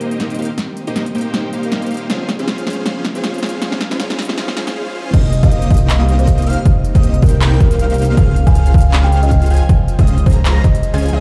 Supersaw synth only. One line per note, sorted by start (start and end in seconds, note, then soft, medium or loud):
0.00 0.37 A#3 loud
0.00 0.37 D#4 medium
0.00 0.37 G4 medium
0.00 0.37 C5 medium
0.00 0.37 D#5 loud
0.39 0.51 A#3 loud
0.39 0.51 D#4 medium
0.39 0.51 G4 medium
0.39 0.51 C5 medium
0.39 0.51 F5 loud
0.87 1.06 A#3 medium
0.87 1.06 D#4 medium
0.87 1.06 G4 medium
0.87 1.06 C5 medium
0.87 1.06 D#5 loud
1.15 1.51 A#3 medium
1.15 1.51 D#4 medium
1.15 1.51 G4 medium
1.15 1.51 C5 medium
1.15 1.51 G5 medium
1.53 2.08 A#3 medium
1.53 2.08 D#4 medium
1.53 2.08 G4 medium
1.53 2.08 C5 medium
1.53 2.08 F5 medium
2.10 2.28 C#4 medium
2.10 2.28 F4 medium
2.10 2.28 G#4 medium
2.10 2.28 C5 medium
2.10 2.28 F5 loud
2.39 2.65 C#4 medium
2.39 2.65 F4 medium
2.39 2.65 G#4 medium
2.39 2.65 C5 medium
2.39 2.65 F5 medium
2.67 2.84 C#4 medium
2.67 2.84 F4 medium
2.67 2.84 G#4 medium
2.67 2.84 C5 medium
2.67 2.84 F5 loud
2.86 3.04 C#4 medium
2.86 3.04 F4 medium
2.86 3.04 G#4 medium
2.86 3.04 C5 medium
2.86 3.04 F5 loud
3.15 3.41 C#4 medium
3.15 3.41 F4 medium
3.15 3.41 G#4 medium
3.15 3.41 C5 medium
3.15 3.41 F5 medium
3.43 3.60 C#4 medium
3.43 3.60 F4 medium
3.43 3.60 G#4 medium
3.43 3.60 C5 medium
3.43 3.60 F5 loud
3.62 3.80 C#4 medium
3.62 3.80 F4 medium
3.62 3.80 G#4 medium
3.62 3.80 C5 medium
3.62 3.80 F5 loud
3.91 3.98 C#4 medium
3.91 3.98 F4 medium
3.91 3.98 G#4 medium
3.91 3.98 C5 medium
3.91 3.98 F5 medium
4.00 4.18 C#4 medium
4.00 4.18 F4 medium
4.00 4.18 G#4 medium
4.00 4.18 C5 medium
4.00 4.18 F5 loud
4.29 4.36 C#4 medium
4.29 4.36 F4 medium
4.29 4.36 G#4 medium
4.29 4.36 C5 medium
4.29 4.36 F5 medium
4.38 4.55 C#4 loud
4.38 4.55 F4 medium
4.38 4.55 G#4 medium
4.38 4.55 C5 medium
4.38 4.55 F5 loud
4.57 4.74 C#4 loud
4.57 4.74 F4 medium
4.57 4.74 G#4 medium
4.57 4.74 C5 medium
4.57 4.74 F5 loud
4.76 4.93 C#4 medium
4.76 4.93 F4 medium
4.76 4.93 G#4 medium
4.76 4.93 C5 medium
4.76 4.93 F5 loud
4.95 5.12 C#4 medium
4.95 5.12 F4 medium
4.95 5.12 G#4 medium
4.95 5.12 C5 medium
4.95 5.12 F5 loud
5.14 5.32 A#3 medium
5.14 5.32 D#4 medium
5.14 5.32 G4 medium
5.14 5.32 C5 medium
5.14 5.32 D#5 loud
5.43 5.69 A#3 medium
5.43 5.69 D#4 medium
5.43 5.69 G4 medium
5.43 5.69 C5 medium
5.43 5.69 D#5 medium
5.71 6.44 A#3 loud
5.71 6.44 D#4 medium
5.71 6.44 G4 medium
5.71 6.44 C5 medium
5.71 6.44 D#5 loud
6.47 6.59 A#3 loud
6.47 6.59 D#4 medium
6.47 6.59 G4 medium
6.47 6.59 C5 medium
6.47 6.59 F5 loud
6.95 7.14 A#3 medium
6.95 7.14 D#4 medium
6.95 7.14 G4 medium
6.95 7.14 C5 medium
6.95 7.14 D#5 loud
7.22 7.58 A#3 medium
7.22 7.58 D#4 medium
7.22 7.58 G4 medium
7.22 7.58 C5 medium
7.22 7.58 G5 medium
7.61 8.15 A#3 medium
7.61 8.15 D#4 medium
7.61 8.15 G4 medium
7.61 8.15 C5 medium
7.61 8.15 F5 medium
8.17 8.36 C#4 medium
8.17 8.36 F4 medium
8.17 8.36 G#4 medium
8.17 8.36 C5 medium
8.17 8.36 F5 loud
8.47 8.72 C#4 medium
8.47 8.72 F4 medium
8.47 8.72 G#4 medium
8.47 8.72 C5 medium
8.47 8.72 F5 medium
8.74 9.48 C#4 loud
8.74 9.48 F4 medium
8.74 9.48 G#4 medium
8.74 9.48 C5 medium
8.74 9.48 F5 loud
9.50 9.63 C#4 loud
9.50 9.63 F4 medium
9.50 9.63 G#4 medium
9.50 9.63 C5 medium
9.50 9.63 G#5 loud
9.99 10.17 C#4 medium
9.99 10.17 F4 medium
9.99 10.17 G#4 medium
9.99 10.17 C5 medium
9.99 10.17 D#5 loud
10.26 10.62 C#4 medium
10.26 10.62 F4 medium
10.26 10.62 G#4 medium
10.26 10.62 C5 medium
10.26 10.62 A#5 medium
10.94 11.10 C#4 medium
10.94 11.10 F4 medium
10.94 11.10 G#4 medium
10.94 11.10 C5 medium
10.94 11.10 G#5 loud
11.13 11.19 C#4 medium
11.13 11.19 F4 medium
11.13 11.19 G#4 medium
11.13 11.19 C5 medium
11.13 11.19 D#5 medium